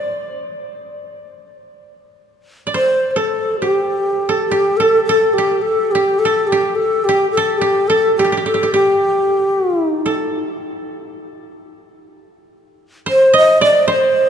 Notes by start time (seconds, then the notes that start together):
Already playing: C5 D5
2.67 D5
2.74 C5
3.11 C5
3.16 A4
3.61 G4
4.29 A4
4.47 G4
4.51 G4
4.77 A4
5.05 A4
5.09 A4
5.34 G4
5.38 G4
5.62 A4
5.91 G4
6.19 A4
6.25 A4
6.47 G4
6.52 G4
6.75 A4
7.04 G4
7.09 G4
7.31 A4
7.37 A4
7.58 G4
7.88 A4
8.16 G4
8.24 G4
8.32 G4
8.37 G4
8.45 G4 A4
8.54 G4
8.63 G4
8.74 G4
9.89 D#4
10.06 A4
13.06 C5
13.33 D#5
13.61 D5
13.88 C5